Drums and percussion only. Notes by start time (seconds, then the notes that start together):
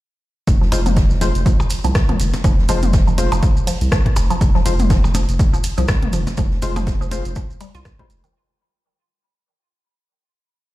0.47 kick, closed hi-hat, maracas
0.62 snare
0.72 closed hi-hat, ride, percussion blips, maracas
0.86 closed hi-hat, mid tom, maracas
0.96 kick, snare, closed hi-hat, maracas
1.10 snare, maracas
1.21 closed hi-hat, ride, percussion blips, maracas
1.35 closed hi-hat, maracas
1.46 kick, closed hi-hat, maracas
1.60 percussion blips, maracas
1.70 closed hi-hat, ride, maracas
1.84 closed hi-hat, maracas
1.95 kick, cross-stick, snare, closed hi-hat, maracas
2.09 closed hi-hat, mid tom
2.20 closed hi-hat, ride, maracas
2.34 snare, closed hi-hat, percussion blips, maracas
2.44 kick, closed hi-hat, percussion blips, maracas
2.58 snare
2.69 closed hi-hat, ride, percussion blips, maracas
2.82 closed hi-hat, mid tom, maracas
2.93 kick, snare, closed hi-hat, maracas
3.07 closed hi-hat, maracas
3.18 closed hi-hat, ride, percussion blips, maracas
3.32 closed hi-hat, percussion blips, maracas
3.42 kick, closed hi-hat, maracas
3.56 maracas
3.67 closed hi-hat, open hi-hat, ride, maracas
3.81 closed hi-hat, maracas
3.91 kick, cross-stick, snare, closed hi-hat, maracas
4.06 kick, closed hi-hat, percussion blips
4.16 closed hi-hat, ride, percussion blips, maracas
4.31 closed hi-hat, maracas
4.41 kick, closed hi-hat, maracas
4.55 snare
4.65 closed hi-hat, ride, percussion blips, maracas
4.79 closed hi-hat, mid tom, maracas
4.90 kick, snare, closed hi-hat, maracas
5.04 snare, percussion blips, maracas
5.14 closed hi-hat, ride, percussion blips, maracas
5.29 closed hi-hat, maracas
5.39 kick, closed hi-hat, maracas
5.54 maracas
5.64 closed hi-hat, ride, maracas
5.77 closed hi-hat, maracas
5.88 kick, cross-stick, snare, closed hi-hat, percussion blips, maracas
6.02 closed hi-hat, mid tom
6.13 closed hi-hat, ride, maracas
6.27 snare, closed hi-hat, percussion blips, maracas
6.37 kick, closed hi-hat, maracas
6.51 snare
6.62 closed hi-hat, ride, percussion blips, maracas
6.76 closed hi-hat, mid tom, percussion blips, maracas
6.87 kick, snare, closed hi-hat, maracas
7.01 closed hi-hat, maracas
7.11 closed hi-hat, ride, percussion blips, maracas
7.25 closed hi-hat, maracas
7.35 kick, closed hi-hat, maracas
7.50 maracas
7.61 closed hi-hat, open hi-hat, ride, percussion blips, maracas
7.75 closed hi-hat, maracas
7.85 kick, cross-stick, snare, closed hi-hat, maracas
7.99 kick, closed hi-hat, percussion blips
8.10 closed hi-hat, ride, maracas
8.24 closed hi-hat, maracas